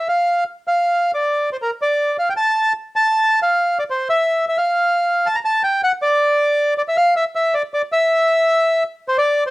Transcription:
bandoneon
0.08 F5
0.68 F5
1.14 D5
1.53 C5
1.62 A#4
1.82 D5
2.19 F5
2.29 G5
2.37 A5
2.96 A5
3.42 F5
3.79 D5
3.90 C5
4.10 E5
4.49 E5
4.58 F5
5.26 A5
5.35 A#5
5.45 A5
5.64 G5
5.84 F#5
6.02 D5
6.78 D5
6.88 E5
6.97 F5
7.16 E5
7.36 E5
7.54 D5
7.74 D5
7.92 E5
9.08 C5
9.18 D5
9.46 C5

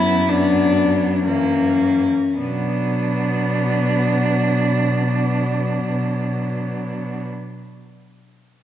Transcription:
cello
Already playing: F#2 F#3 B3 E4
0.28 F#3 B3 D4
1.15 D4
1.25 E3 A#3 C#4
2.37 B2 F#3 B3 D4

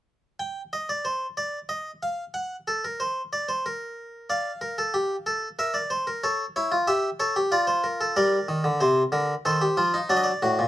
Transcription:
harpsichord
0.40 G5
0.73 D#5
0.89 D5
1.05 C5
1.37 D5
1.69 D#5
2.03 F5
2.34 F#5
2.68 A4
2.85 A#4
3.00 C5
3.33 D5
3.49 C5
3.66 A#4
4.30 D5 F5
4.61 A#4
4.78 A4
4.94 G4
5.26 A4
5.59 A#4 E5
5.74 D5
5.90 C5
6.07 A#4
6.24 A4 C#5
6.56 E4 C#5
6.72 F4
6.87 G4 E5
7.20 A4 C#5
7.36 G4
7.52 F4 D5
7.67 C5
7.84 A#4
8.01 A4
8.16 G3 A#4 D5
8.48 D#3
8.64 D3
8.80 C3 C5
9.12 D3 A#4
9.45 D#3 A4 C5
9.61 G4
9.77 F3 F4
9.94 D#4
10.09 F#3 D4 D5
10.17 D#5
10.24 D5
10.42 A2 F#4
10.59 A#2

